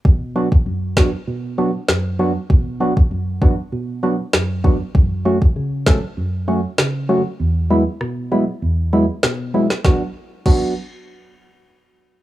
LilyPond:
<<
  \new Staff \with { instrumentName = "Synth stab" } { \time 4/4 \key b \dorian \tempo 4 = 98 << { r8 <fis b d' fis'>8 r8 <fis b d' fis'>8 r8 <fis b d' fis'>8 r8 <fis b d' fis'>8 | r8 <fis b d' fis'>8 r8 <fis b d' fis'>8 r8 <fis b d' fis'>8 r8 <fis b d' fis'>8 | r8 <fis a cis' fis'>8 r8 <fis a cis' a'>8 r8 <fis a cis' fis'>8 r8 <fis a cis' fis'>8 | r8 <fis gis b e'>8 r8 <fis gis b e'>8 r8 <fis gis b e'>8 r8 <fis gis b e'>8 |
<fis b d' fis'>8 r8 <fis b d' fis'>8 r2 r8 | } \\ { b,4 fis,4 b,4 fis,4 | b,4 fis,4 b,4 fis,4 | fis,4 cis4 fis,4 cis4 | e,4 b,4 e,4 b,4 |
r1 | } >> }
  \new DrumStaff \with { instrumentName = "Drums" } \drummode { \time 4/4 bd8. bd16 r8 <bd sn>8 r4 sn4 | bd8. bd16 r8 bd8 r4 sn8 bd8 | bd8. bd16 r8 <bd sn>8 r4 sn4 | r4 ss4 r4 sn8. sn16 |
<bd sn>4 <cymc bd>4 r4 r4 | }
>>